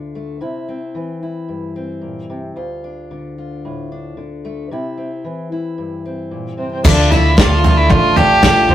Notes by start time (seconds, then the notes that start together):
Already playing: D2 D3 D4 F4
0.15 A3
0.41 C3 E4
0.69 C4
0.95 E3
1.23 E4
1.49 G2
1.76 C4
2.02 A#2
2.30 C3
2.56 D2 F4
2.84 D4
3.11 D3
3.38 F4
3.65 A2
3.92 D4
4.17 D3
4.45 A3
4.71 C3 E4
4.98 C4
5.24 E3
5.52 E4
5.78 G2
6.06 C4
6.31 A#2
6.58 C3 C4
6.72 C4
6.83 D2 D3 F3 A3 D4 F4 A4 D5, kick, floor tom, crash
7.11 D4 E4 F4 A4, floor tom
7.29 E4
7.37 A3 D4 F4 A4, kick, snare, floor tom
7.64 D4 F4 A4, floor tom
7.77 E4
7.89 A1 F4, kick, floor tom
8.15 A1 F3 A3 D4 F4 G4 A4 D5, floor tom
8.42 A3 D4 F4 A4, kick, snare, floor tom
8.69 C4, floor tom